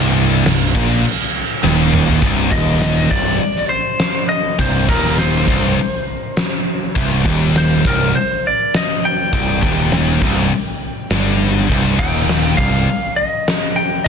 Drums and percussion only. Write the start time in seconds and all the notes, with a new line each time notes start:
0.46 snare, crash
0.75 kick
1.05 crash
1.64 snare
1.93 mid tom
2.08 floor tom
2.22 kick, open hi-hat
2.52 kick
2.81 snare, open hi-hat
3.11 kick
3.41 open hi-hat
3.56 snare
3.99 snare, open hi-hat
4.59 kick, open hi-hat
4.89 kick
5.04 snare
5.18 snare, open hi-hat
5.48 kick
5.77 open hi-hat
6.37 snare, open hi-hat
6.96 kick, open hi-hat
7.26 kick
7.55 snare, open hi-hat
7.85 kick
8.15 open hi-hat
8.74 snare, open hi-hat
9.33 kick, open hi-hat
9.62 kick
9.92 snare, open hi-hat
10.22 kick
10.52 open hi-hat
11.10 snare, open hi-hat
11.69 kick, open hi-hat
11.99 kick
12.29 snare, open hi-hat
12.58 kick
12.88 open hi-hat
13.47 snare, open hi-hat